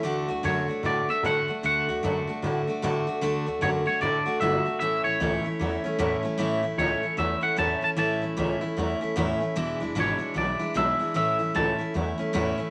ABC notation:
X:1
M:4/4
L:1/8
Q:"Swing" 1/4=151
K:A
V:1 name="Clean electric guitar"
z2 c2 d e f2 | f4 z4 | z2 c c d2 e2 | e c6 z |
z2 c2 e f a a | a4 z4 | z2 c2 d2 e2 | e2 a2 z4 |]
V:2 name="Steel-string acoustic guitar"
[D,A,DF] [A,DF] [D,A,DF] [A,DF] [D,A,DF] [A,DF] [D,A,DF] [A,DF] | [D,A,DF] [A,DF] [D,A,DF] [A,DF] [D,A,DF] [A,DF] [D,A,DF] [A,DF] | [D,A,DF] [A,DF] [D,A,DF] [A,DF] [D,A,DF] [A,DF] [D,A,DF] [A,DF] | [A,,E,A,CE] [A,CE] [A,,E,A,CE] [A,CE] [E,A,CE] [A,CE] [A,,E,A,CE] [A,CE] |
[A,,E,A,CE] [A,C] [A,,E,A,CE] [A,CE] [E,A,CE] [A,CE] [A,,E,A,CE] [A,CE] | [A,,E,A,CE] [A,CE] [A,,E,A,CE] [A,CE] [E,A,CE] [A,CE] [A,,E,A,CE] [A,CE] | [E,,B,,E,G,DE] [E,G,DE] [E,,B,,E,G,DE] [E,G,DE] [E,G,DE] [E,G,DE] [E,,B,,E,G,DE] [E,G,DE] | [A,,E,A,CE] [A,CE] [A,,E,A,CE] [A,CE] [E,A,CE] [A,CE] [A,,E,A,CE] [A,CE] |]
V:3 name="Upright bass" clef=bass
D,, D,, F,, z A,, z A,, z | D,, D,, F,, z A,, z A,, z | D,, D,, F,, z A,, z =G,,, z | A,,, A,,, C,, z E,, z E,, z |
A,,, A,,, C,, z E,, z E,, z | A,,, A,,, C,, z E,, z E,, z | E,,, E,,, G,,, z B,,, z B,,, z | A,,, A,,, C,, z E,, z E,, z |]